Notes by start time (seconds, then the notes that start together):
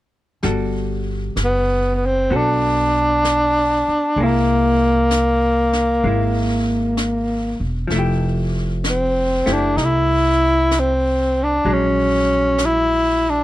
0.43 G1 G3 F#4 A4, brush sweep, snare
1.36 F#1, brush sweep, snare, hi-hat pedal
1.44 B3
1.95 B3
2.06 C4
2.30 B1 B3 F#4 A4, brush sweep
2.36 D4
3.24 brush sweep, snare, hi-hat pedal
3.88 muted upright bass stroke
4.16 C2 G#3, brush sweep
4.21 A#3 E4
5.11 brush sweep, snare, hi-hat pedal
5.73 snare
6.04 G#1 G#3 A#3 E4, brush sweep
6.97 brush sweep, snare, hi-hat pedal
7.60 E1
7.87 F1 F3, brush sweep, snare
7.92 A3 E4
7.99 G4
8.84 brush sweep, snare, hi-hat pedal
8.89 C4
9.46 F#1 A3 E4 G4, snare
9.53 D4
9.77 C2 D#4, brush sweep, snare
9.84 E4
10.71 brush sweep, snare, hi-hat pedal
10.79 C4
11.44 D4
11.64 A#1 F#3 G#3, brush sweep
11.73 C#4
12.58 brush sweep, snare, hi-hat pedal
12.65 E4
13.30 D4